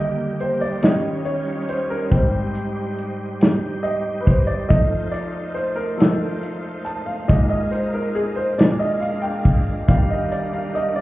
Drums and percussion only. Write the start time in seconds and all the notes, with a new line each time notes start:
0.40 closed hi-hat
0.82 snare, closed hi-hat
1.26 closed hi-hat
1.68 closed hi-hat
2.12 kick, closed hi-hat
2.55 closed hi-hat
2.98 closed hi-hat
3.41 snare, closed hi-hat
3.84 closed hi-hat
4.27 kick, closed hi-hat
4.70 kick, closed hi-hat
5.14 closed hi-hat
5.57 closed hi-hat
6.00 snare, closed hi-hat
6.43 closed hi-hat
6.86 closed hi-hat
7.29 kick, closed hi-hat
7.72 closed hi-hat
8.16 closed hi-hat
8.59 snare, closed hi-hat
9.02 closed hi-hat
9.45 kick, closed hi-hat
9.88 kick, closed hi-hat
10.32 closed hi-hat
10.75 closed hi-hat